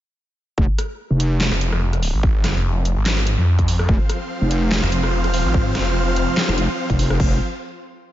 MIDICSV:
0, 0, Header, 1, 5, 480
1, 0, Start_track
1, 0, Key_signature, -4, "minor"
1, 0, Tempo, 413793
1, 670, Time_signature, 4, 2, 24, 8
1, 9423, End_track
2, 0, Start_track
2, 0, Title_t, "Supersaw synth"
2, 0, Program_c, 0, 81
2, 4508, Note_on_c, 0, 53, 84
2, 4508, Note_on_c, 0, 77, 93
2, 4509, Note_on_c, 0, 60, 75
2, 4509, Note_on_c, 0, 72, 76
2, 8311, Note_off_c, 0, 53, 0
2, 8311, Note_off_c, 0, 60, 0
2, 8311, Note_off_c, 0, 72, 0
2, 8311, Note_off_c, 0, 77, 0
2, 8349, Note_on_c, 0, 53, 74
2, 8349, Note_on_c, 0, 60, 67
2, 8349, Note_on_c, 0, 72, 70
2, 8349, Note_on_c, 0, 77, 78
2, 8573, Note_off_c, 0, 53, 0
2, 8573, Note_off_c, 0, 60, 0
2, 8573, Note_off_c, 0, 72, 0
2, 8573, Note_off_c, 0, 77, 0
2, 9423, End_track
3, 0, Start_track
3, 0, Title_t, "Detuned saw bass"
3, 0, Program_c, 1, 39
3, 1761, Note_on_c, 1, 29, 97
3, 1980, Note_off_c, 1, 29, 0
3, 2000, Note_on_c, 1, 29, 98
3, 2459, Note_off_c, 1, 29, 0
3, 2480, Note_on_c, 1, 32, 101
3, 2812, Note_off_c, 1, 32, 0
3, 2829, Note_on_c, 1, 30, 96
3, 2940, Note_off_c, 1, 30, 0
3, 2961, Note_on_c, 1, 29, 99
3, 3420, Note_off_c, 1, 29, 0
3, 3441, Note_on_c, 1, 32, 99
3, 3900, Note_off_c, 1, 32, 0
3, 3921, Note_on_c, 1, 41, 104
3, 4492, Note_off_c, 1, 41, 0
3, 5600, Note_on_c, 1, 29, 97
3, 5820, Note_off_c, 1, 29, 0
3, 5840, Note_on_c, 1, 29, 101
3, 6299, Note_off_c, 1, 29, 0
3, 6320, Note_on_c, 1, 32, 99
3, 6652, Note_off_c, 1, 32, 0
3, 6669, Note_on_c, 1, 30, 96
3, 6779, Note_off_c, 1, 30, 0
3, 6800, Note_on_c, 1, 29, 95
3, 7259, Note_off_c, 1, 29, 0
3, 9423, End_track
4, 0, Start_track
4, 0, Title_t, "Wobble bass"
4, 0, Program_c, 2, 39
4, 669, Note_on_c, 2, 29, 97
4, 780, Note_off_c, 2, 29, 0
4, 1281, Note_on_c, 2, 29, 96
4, 1740, Note_off_c, 2, 29, 0
4, 4509, Note_on_c, 2, 29, 94
4, 4619, Note_off_c, 2, 29, 0
4, 5120, Note_on_c, 2, 29, 100
4, 5579, Note_off_c, 2, 29, 0
4, 7520, Note_on_c, 2, 29, 103
4, 7740, Note_off_c, 2, 29, 0
4, 8001, Note_on_c, 2, 29, 102
4, 8332, Note_off_c, 2, 29, 0
4, 8350, Note_on_c, 2, 29, 96
4, 8573, Note_off_c, 2, 29, 0
4, 9423, End_track
5, 0, Start_track
5, 0, Title_t, "Drums"
5, 670, Note_on_c, 9, 36, 122
5, 786, Note_off_c, 9, 36, 0
5, 910, Note_on_c, 9, 37, 59
5, 910, Note_on_c, 9, 42, 84
5, 1026, Note_off_c, 9, 37, 0
5, 1026, Note_off_c, 9, 42, 0
5, 1391, Note_on_c, 9, 42, 86
5, 1507, Note_off_c, 9, 42, 0
5, 1631, Note_on_c, 9, 38, 127
5, 1631, Note_on_c, 9, 39, 99
5, 1747, Note_off_c, 9, 38, 0
5, 1747, Note_off_c, 9, 39, 0
5, 1761, Note_on_c, 9, 37, 53
5, 1871, Note_on_c, 9, 42, 83
5, 1877, Note_off_c, 9, 37, 0
5, 1987, Note_off_c, 9, 42, 0
5, 2001, Note_on_c, 9, 37, 73
5, 2117, Note_off_c, 9, 37, 0
5, 2241, Note_on_c, 9, 37, 49
5, 2241, Note_on_c, 9, 42, 39
5, 2349, Note_on_c, 9, 46, 90
5, 2357, Note_off_c, 9, 37, 0
5, 2357, Note_off_c, 9, 42, 0
5, 2465, Note_off_c, 9, 46, 0
5, 2590, Note_on_c, 9, 36, 125
5, 2706, Note_off_c, 9, 36, 0
5, 2830, Note_on_c, 9, 37, 59
5, 2830, Note_on_c, 9, 38, 65
5, 2830, Note_on_c, 9, 42, 81
5, 2946, Note_off_c, 9, 37, 0
5, 2946, Note_off_c, 9, 38, 0
5, 2946, Note_off_c, 9, 42, 0
5, 3310, Note_on_c, 9, 42, 88
5, 3426, Note_off_c, 9, 42, 0
5, 3549, Note_on_c, 9, 38, 125
5, 3549, Note_on_c, 9, 39, 102
5, 3665, Note_off_c, 9, 38, 0
5, 3665, Note_off_c, 9, 39, 0
5, 3680, Note_on_c, 9, 37, 53
5, 3789, Note_on_c, 9, 42, 83
5, 3796, Note_off_c, 9, 37, 0
5, 3905, Note_off_c, 9, 42, 0
5, 4160, Note_on_c, 9, 36, 67
5, 4161, Note_on_c, 9, 42, 36
5, 4270, Note_on_c, 9, 46, 89
5, 4276, Note_off_c, 9, 36, 0
5, 4277, Note_off_c, 9, 42, 0
5, 4386, Note_off_c, 9, 46, 0
5, 4401, Note_on_c, 9, 37, 78
5, 4509, Note_on_c, 9, 36, 124
5, 4517, Note_off_c, 9, 37, 0
5, 4625, Note_off_c, 9, 36, 0
5, 4750, Note_on_c, 9, 37, 61
5, 4750, Note_on_c, 9, 42, 79
5, 4866, Note_off_c, 9, 37, 0
5, 4866, Note_off_c, 9, 42, 0
5, 5229, Note_on_c, 9, 42, 81
5, 5345, Note_off_c, 9, 42, 0
5, 5469, Note_on_c, 9, 38, 127
5, 5469, Note_on_c, 9, 39, 101
5, 5585, Note_off_c, 9, 38, 0
5, 5585, Note_off_c, 9, 39, 0
5, 5600, Note_on_c, 9, 37, 57
5, 5709, Note_on_c, 9, 42, 77
5, 5716, Note_off_c, 9, 37, 0
5, 5825, Note_off_c, 9, 42, 0
5, 5840, Note_on_c, 9, 37, 79
5, 5956, Note_off_c, 9, 37, 0
5, 6080, Note_on_c, 9, 37, 51
5, 6080, Note_on_c, 9, 42, 37
5, 6189, Note_on_c, 9, 46, 91
5, 6196, Note_off_c, 9, 37, 0
5, 6196, Note_off_c, 9, 42, 0
5, 6305, Note_off_c, 9, 46, 0
5, 6430, Note_on_c, 9, 36, 127
5, 6546, Note_off_c, 9, 36, 0
5, 6670, Note_on_c, 9, 37, 65
5, 6670, Note_on_c, 9, 38, 67
5, 6670, Note_on_c, 9, 42, 77
5, 6786, Note_off_c, 9, 37, 0
5, 6786, Note_off_c, 9, 38, 0
5, 6786, Note_off_c, 9, 42, 0
5, 7150, Note_on_c, 9, 42, 80
5, 7266, Note_off_c, 9, 42, 0
5, 7390, Note_on_c, 9, 38, 127
5, 7390, Note_on_c, 9, 39, 95
5, 7506, Note_off_c, 9, 38, 0
5, 7506, Note_off_c, 9, 39, 0
5, 7520, Note_on_c, 9, 37, 59
5, 7630, Note_on_c, 9, 42, 81
5, 7636, Note_off_c, 9, 37, 0
5, 7746, Note_off_c, 9, 42, 0
5, 8000, Note_on_c, 9, 36, 70
5, 8001, Note_on_c, 9, 42, 35
5, 8110, Note_on_c, 9, 46, 89
5, 8116, Note_off_c, 9, 36, 0
5, 8117, Note_off_c, 9, 42, 0
5, 8226, Note_off_c, 9, 46, 0
5, 8241, Note_on_c, 9, 37, 85
5, 8350, Note_on_c, 9, 36, 116
5, 8350, Note_on_c, 9, 49, 89
5, 8357, Note_off_c, 9, 37, 0
5, 8466, Note_off_c, 9, 36, 0
5, 8466, Note_off_c, 9, 49, 0
5, 9423, End_track
0, 0, End_of_file